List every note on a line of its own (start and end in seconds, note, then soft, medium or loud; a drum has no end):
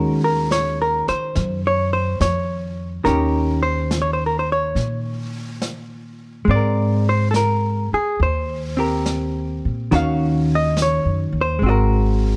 0.00 1.04 D#2 medium
0.00 3.03 D#3 soft
0.00 3.06 G#3 soft
0.00 3.05 C#4 soft
0.00 3.06 F#4 soft
0.00 0.20 A#4 medium
0.24 0.52 A#4 medium
0.51 0.80 C#5 medium
0.51 snare soft
0.51 hi-hat pedal soft
0.82 1.08 A#4 medium
1.08 1.61 C5 medium
1.08 muted upright bass stroke soft
1.08 snare soft
1.35 2.17 F#2 medium
1.35 brush sweep soft
1.35 snare soft
1.67 1.93 C#5 medium
1.93 2.21 C5 medium
2.20 3.01 F2 medium
2.20 2.88 C#5 medium
2.20 snare soft
2.20 hi-hat pedal soft
3.04 4.72 D#2 medium
3.04 6.47 D#3 soft
3.04 6.48 C#4 soft
3.04 6.49 G4 soft
3.04 3.62 A#4 medium
3.04 brush sweep soft
3.04 snare soft
3.63 4.00 C5 medium
3.91 snare soft
3.91 hi-hat pedal soft
4.02 4.13 C#5 soft
4.13 4.25 C5 soft
4.26 4.37 A#4 soft
4.39 4.50 C5 soft
4.52 6.18 C#5 medium
4.75 6.43 A#2 medium
4.75 brush sweep soft
4.75 snare soft
5.62 snare soft
5.62 hi-hat pedal soft
6.45 7.88 G#2 medium
6.45 9.89 G#3 soft
6.45 brush sweep soft
6.49 8.76 C4 soft
6.49 7.09 D5 medium
6.56 7.09 A#4 soft
7.09 7.29 C5 medium
7.31 7.35 A4 soft
7.31 snare soft
7.31 hi-hat pedal soft
7.36 7.89 A#4 medium
7.93 8.21 G#4 medium
7.93 muted upright bass stroke soft
8.20 9.59 D#2 medium
8.20 8.79 C5 medium
8.20 brush sweep soft
8.77 9.90 C4 soft
8.77 9.91 G4 soft
8.77 9.92 A#4 soft
9.06 snare soft
9.06 hi-hat pedal soft
9.65 9.90 A#2 medium
9.91 11.00 D#2 medium
9.91 11.60 D#3 soft
9.91 11.61 C#4 soft
9.91 11.61 F#4 soft
9.91 9.95 A#4 soft
9.91 10.52 F5 medium
9.91 brush sweep soft
9.91 snare soft
10.55 10.80 D#5 medium
10.77 snare soft
10.77 hi-hat pedal soft
10.82 11.38 C#5 medium
11.05 11.31 F#2 soft
11.32 11.58 D#2 medium
11.41 11.63 C5 medium
11.59 12.37 G#1 medium
11.59 12.37 G#3 soft
11.59 brush sweep soft
11.63 12.37 C4 soft
11.63 12.37 F#4 soft
11.70 12.37 A#4 soft